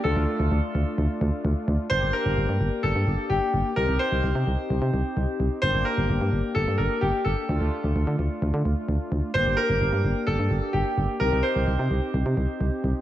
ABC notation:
X:1
M:4/4
L:1/16
Q:1/4=129
K:Gm
V:1 name="Grand piano"
A12 z4 | c2 B6 A4 G4 | B2 c12 z2 | c2 B6 A2 B2 G2 A2- |
A6 z8 z2 | c2 B6 A4 G4 | B2 c12 z2 |]
V:2 name="Analog polysynth"
[A,DF]16 | [B,DG]16 | [CEG]16 | [B,DG]16 |
[A,DF]16 | [B,DG]16 | [CEG]16 |]
V:3 name="FM bass" clef=bass
D,, D,, z D,, D,, z D,, z D,, z D,, z D,, z D,, z | G,,, G,,, z G,,, G,,, G,, G,,, z G,,, G,, G,,, z G,,, z G,,, z | C,, C,, z C,, C,, C, C,, z C,, C, C,, z C,, z C,, z | G,,, G,,, z G,,, G,,, G,, G,,, z G,,, G,, G,,, z G,,, z G,,, z |
D,, D,, z D,, D,, D, D,, z D,, D, D,, z D,, z D,, z | G,,, G,,, z G,,, G,,, G,, G,,, z G,,, G,, G,,, z G,,, z G,,, z | C,, C,, z C,, C,, C, C,, z C,, C, C,, z C,, z C,, z |]